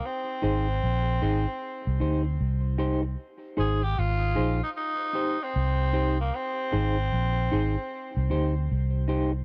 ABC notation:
X:1
M:4/4
L:1/16
Q:"Swing 16ths" 1/4=76
K:Cm
V:1 name="Clean electric guitar"
z2 [EAc] z3 [EAc] z3 [EGc] z3 [EGc] z | z2 [EAc] z3 [EAc] z3 [EGc] z3 [EGc] z | z2 [EAc] z3 [EAc] z3 [EGc] z3 [EGc] z |]
V:2 name="Tenor saxophone"
C12 z4 | z2 A G F3 E E3 C4 B, | C12 z4 |]
V:3 name="Fingered electric bass" clef=bass
z2 A,,,2 B,,,2 A,,, z2 C,, D,,2 C,,4 | z2 A,,,2 A,,,2 B,,, z4 z C,,4 | z2 A,,,2 B,,,2 A,,, z2 C,, D,,2 C,,4 |]